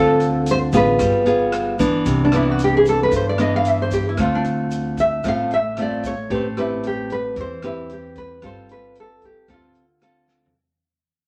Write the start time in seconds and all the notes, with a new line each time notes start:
Already playing: D2 D3 C4 F4 A4
0.20 closed hi-hat, shaker
0.46 closed hi-hat, shaker
0.51 C5
0.73 A1 B3 F4 G#4, kick, closed hi-hat, shaker
0.77 B4
0.99 G1 G3, kick, cross-stick, closed hi-hat, shaker
1.26 B3 F4 G#4, closed hi-hat, shaker
1.52 cross-stick, closed hi-hat
1.79 E3 B3 D4, kick, closed hi-hat, shaker
2.06 C2 C3, kick, closed hi-hat, shaker
2.25 D4
2.32 E3 B3 D4 E4, cross-stick, closed hi-hat, shaker
2.51 F#4
2.59 closed hi-hat, shaker
2.64 G4
2.77 G#4
2.85 A4, closed hi-hat, shaker
3.03 B4
3.11 G2, kick, closed hi-hat, shaker
3.16 C5
3.29 D5
3.38 E3 B3 D4 D#5, cross-stick, closed hi-hat, shaker
3.56 F5
3.65 closed hi-hat, shaker
3.69 E5
3.82 C5
3.91 G4, kick, closed hi-hat, shaker
4.09 E4
4.17 D2 D3 A3 C4 F4, kick, cross-stick, closed hi-hat, shaker
4.22 F4
4.35 D4
4.45 closed hi-hat, shaker
4.71 closed hi-hat, shaker
4.97 E5, kick, closed hi-hat, shaker
5.24 A1 A2 A3 C4 F4, kick, cross-stick, closed hi-hat, shaker
5.28 F5
5.51 E5, closed hi-hat, shaker
5.77 A3 C4 F4, cross-stick, closed hi-hat
5.82 D5
6.04 C#5, kick, closed hi-hat, shaker
6.30 A1 A3 C4 G4 B4, kick, closed hi-hat
6.35 C5
6.57 C4 E4 G4 B4, cross-stick, closed hi-hat
6.83 G4, closed hi-hat
7.10 B4, closed hi-hat
7.36 E2 E3, kick, closed hi-hat
7.41 C5
7.62 C4 E4 G4 B4, cross-stick, closed hi-hat
7.90 G4, closed hi-hat
8.16 B4, kick, closed hi-hat
8.42 G1 G3 C4 F4 A4, kick, cross-stick, closed hi-hat
8.46 C5
8.69 B4, closed hi-hat
8.95 closed hi-hat
9.00 A4
9.22 G4, kick, closed hi-hat
9.48 D2 D3 C4 F4 A4, kick, cross-stick, closed hi-hat
9.53 F4
9.75 closed hi-hat
10.01 C4 F4 A4, cross-stick, closed hi-hat
10.28 snare
10.46 floor tom